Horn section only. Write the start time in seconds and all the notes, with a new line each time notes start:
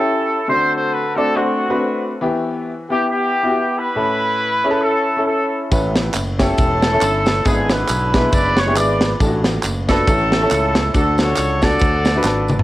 Already playing: C#4 E4 A4
0.50 F#4 A4 C5
0.74 C5
0.92 B4
1.15 A4
1.36 A3 C4 F#4
2.90 G4
3.09 B3 E4 G4
3.77 E4 B4
4.82 C#4 E4 A4
5.26 C#4 E4 A4
6.40 C#4 E4 A4
7.46 B3 D4 G#4
7.71 D4 E4 B4
8.32 B4 D5
8.58 C#5
8.77 B4 D5
9.89 C#4 E4 A4
10.95 D4 F#4 A4
11.19 F#4 A4 C#5
11.62 F#4 A4 D5